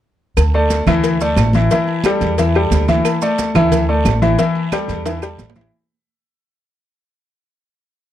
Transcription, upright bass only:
0.37 0.84 D2 loud
0.87 1.34 D2 medium
1.37 1.67 A1 loud
2.21 2.68 E2 medium
2.71 3.01 D2 medium
3.55 4.02 D2 medium
4.05 4.35 A1 medium
4.88 5.35 E2 medium
5.38 5.68 A1 medium

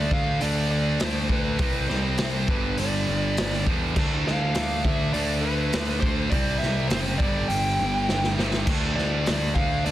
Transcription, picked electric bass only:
0.12 0.39 D2 medium
0.42 0.97 D2 medium
1.02 1.56 D2 loud
1.59 1.87 C2 medium
1.89 2.17 C2 medium
2.19 2.47 C2 medium
2.48 2.76 G1 medium
2.79 3.06 G1 medium
3.08 3.36 G1 loud
3.39 3.66 G1 medium
3.67 3.94 E2 loud
3.96 4.24 D2 loud
4.27 4.54 D2 loud
4.55 4.83 D2 medium
4.85 5.12 D2 medium
5.15 5.69 D2 medium
5.74 6.29 D2 medium
6.32 6.60 C2 medium
6.63 6.90 C2 medium
6.90 7.18 F#1 medium
7.20 7.48 G1 medium
7.50 7.77 G1 medium
7.80 8.07 G1 loud
8.09 8.37 G1 loud
8.38 8.66 G1 medium
8.68 8.95 D2 medium
8.97 9.25 D2 loud
9.27 9.54 D2 medium
9.56 9.83 D2 medium
9.86 9.91 D2 medium

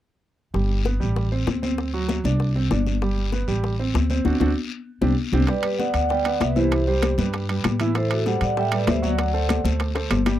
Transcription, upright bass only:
0.54 0.97 G1 medium
1.00 1.44 A1 medium
1.47 2.19 D2 medium
2.24 2.67 C2 medium
2.71 3.42 G1 medium
3.48 3.91 A1 medium
3.94 4.23 D2 medium
4.25 4.36 D2 medium
4.40 4.52 D2 medium
5.01 5.13 C2 medium
5.32 5.44 C2 medium
5.94 6.37 D2 medium
6.41 7.12 C2 medium
7.18 7.61 G2 medium
7.64 8.36 A2 medium
8.41 8.84 A2 medium
8.88 9.59 D2 medium
9.64 10.07 D2 medium
10.10 10.39 G1 medium

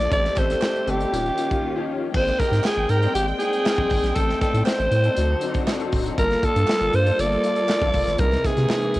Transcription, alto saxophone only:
0.00 0.12 D5 loud
0.13 0.40 D5 loud
0.39 0.92 C5 medium
0.90 1.90 G4 medium
2.16 2.41 C5 loud
2.39 2.65 A#4 medium
2.66 2.92 G#4 loud
2.90 3.15 A#4 loud
3.15 3.27 G4 medium
3.39 4.16 G#4 loud
4.15 4.40 A4 medium
4.41 4.64 A4 medium
4.66 5.63 C5 loud
6.19 6.47 A#4 loud
6.45 6.97 A4 loud
6.95 7.22 C5 loud
7.20 8.21 D5 loud
8.19 8.48 A#4 medium
8.46 9.00 G#4 medium

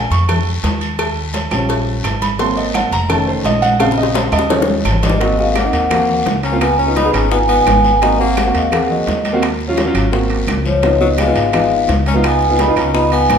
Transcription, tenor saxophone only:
5.04 5.20 G3 medium
5.21 5.37 F#3 medium
5.39 5.55 G#3 medium
5.56 5.72 A#3 medium
5.73 5.90 A#3 medium
5.91 6.23 A#3 medium
6.43 6.60 C#4 medium
6.61 6.77 B3 medium
6.79 6.95 C#4 medium
6.96 7.13 D#4 medium
7.13 7.30 C#4 medium
7.31 7.39 B3 medium
7.49 7.98 B3 medium
8.02 8.18 D#4 medium
8.20 8.53 A#3 medium
8.55 8.71 G#3 medium
8.72 8.89 A#3 medium
8.90 9.39 F#3 medium
10.66 10.99 F3 medium
11.01 11.09 F#3 medium
11.18 11.51 G#3 medium
11.54 11.87 G#3 medium
12.07 12.15 C#4 medium
12.25 12.57 B3 medium
12.60 12.76 D#4 medium
12.77 12.93 C#4 medium
12.94 13.11 D#4 medium
13.12 13.38 B3 medium

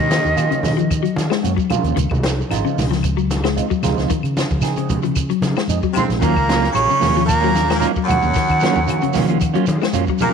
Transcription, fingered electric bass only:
0.00 0.19 D#3 medium
0.25 0.34 D#2 medium
0.37 0.48 D#3 medium
0.51 muted fingered electric bass stroke soft
0.65 1.05 D#3 medium
1.17 1.28 D#3 loud
1.44 1.54 F#2 loud
1.70 muted fingered electric bass stroke soft
1.84 1.94 D#2 medium
1.97 2.08 C#2 loud
2.11 2.41 C2 loud
2.51 2.61 G#1 medium
2.78 3.60 C#2 loud
3.84 3.94 C#2 medium
3.98 4.07 C#2 medium
4.23 4.44 C#3 medium
4.51 4.61 C#2 medium
4.62 4.73 C#3 medium
4.75 muted fingered electric bass stroke soft
4.90 5.31 C#3 medium
5.42 5.53 C#3 loud
5.68 5.79 F2 medium
5.95 muted fingered electric bass stroke soft
6.09 6.19 A#1 loud
6.23 6.33 D#2 loud
6.37 6.67 C#2 loud
6.75 6.86 A#1 medium
7.02 7.84 D#2 medium
8.10 8.20 D#2 medium
8.23 8.33 D#2 medium
8.49 8.70 D#3 medium
8.76 8.86 D#2 medium
8.89 9.00 D#3 medium
9.04 muted fingered electric bass stroke soft
9.15 9.56 D#3 medium
9.67 9.78 D#3 loud
9.94 10.05 F#2 loud
10.20 muted fingered electric bass stroke soft

